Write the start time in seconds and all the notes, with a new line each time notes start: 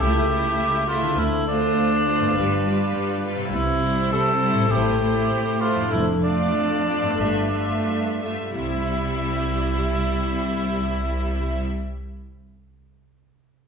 Already playing: C#3 E4 G4 A4
0.00 C#2 A3 E4 G4 E5
0.30 A3 E4 E5
0.58 C#2
0.88 A3 E4 F4 E5
1.00 D3
1.05 C4
1.09 F4
1.13 A4
1.18 D2 E4
1.47 A3 D4 F4 C5
1.78 D2
2.07 A3 F4 C5
2.19 G2
2.24 B3
2.28 F4
2.33 G4 B4
2.37 G1 G2 G3 F4
2.66 G3 F4 B4
2.96 G2
3.24 G3 F4 B4
3.36 C3
3.40 C4
3.45 E4
3.49 G4
3.54 C2 C3 E4
3.82 G3 E4 C5
4.12 C3 A4
4.41 G3 E4 C5
4.53 A2
4.57 C4
4.62 E4
4.66 A4
4.70 A1 A2 A3 E4 G4 C5
5.00 A3 E4 C5
5.30 A2
5.60 A3 E4 F4 C5
5.75 F2
5.79 D4
5.83 F4
5.88 F2 E4 A4
5.92 F1
6.23 A3 D4 F4 D5
6.54 F2
6.86 A3 F4 D5
7.01 G2
7.05 B3
7.10 F4
7.14 G2 A4
7.19 G1 A3 F4 E5
7.51 A3 F4 E5
7.86 G2
8.21 A3 F4 E5
8.55 C2 C3 G3 E4 E5
8.62 C4
8.69 E4
8.76 G4
8.83 E5